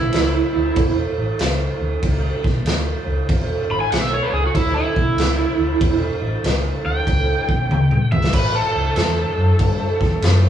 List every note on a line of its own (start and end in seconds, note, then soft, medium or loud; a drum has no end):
0.00 0.93 E4 loud
0.13 0.41 C#2 medium
0.13 snare loud
0.13 crash medium
0.56 0.69 D2 medium
0.76 1.03 E1 medium
0.76 kick loud
0.76 crash medium
1.18 1.32 A1 medium
1.39 1.67 C#2 medium
1.39 snare loud
1.39 crash medium
1.81 1.95 D2 medium
2.03 2.29 C#2 medium
2.03 kick medium
2.03 crash medium
2.44 2.58 B1 medium
2.44 kick medium
2.44 snare soft
2.65 2.92 D2 medium
2.65 snare loud
2.65 crash medium
3.06 3.21 C#2 medium
3.29 3.56 E1 medium
3.29 kick loud
3.29 crash medium
3.70 3.84 G#1 medium
3.70 3.80 B5 loud
3.81 3.89 G#5 medium
3.92 4.18 B1 medium
3.92 4.01 F#5 medium
3.92 snare loud
3.92 crash medium
4.01 4.10 E5 medium
4.14 4.33 C#5 medium
4.23 4.28 B4 medium
4.33 4.47 C#2 loud
4.33 4.46 G#4 loud
4.46 4.54 F#4 loud
4.54 4.81 D2 medium
4.54 4.75 E4 loud
4.54 kick medium
4.54 crash medium
4.76 5.98 E4 loud
4.96 5.10 B1 medium
4.96 kick medium
5.17 5.44 C#2 loud
5.17 snare loud
5.17 crash medium
5.59 5.73 D2 medium
5.81 6.08 E1 medium
5.81 kick loud
5.81 crash medium
6.22 6.36 A1 medium
6.44 6.71 C#2 medium
6.44 snare loud
6.44 crash medium
6.85 6.99 D2 medium
6.85 8.08 G5 loud
7.07 7.34 C#2 medium
7.07 kick medium
7.07 crash medium
7.49 7.62 B1 medium
7.49 kick medium
7.70 7.97 D2 medium
7.70 high tom medium
7.91 mid tom medium
8.12 8.26 C#2 medium
8.12 8.32 E5 loud
8.12 mid tom medium
8.24 snare medium
8.33 8.60 A1 loud
8.33 8.54 B4 loud
8.33 kick loud
8.33 crash medium
8.55 10.39 A4 loud
8.76 8.89 C#2 medium
8.96 9.23 E2 medium
8.96 snare loud
8.96 crash medium
9.38 9.51 F#2 medium
9.59 9.86 G2 medium
9.59 kick medium
9.59 crash medium
10.01 10.14 E2 medium
10.01 kick medium
10.01 snare soft
10.22 10.49 F#2 medium
10.22 snare loud
10.22 crash medium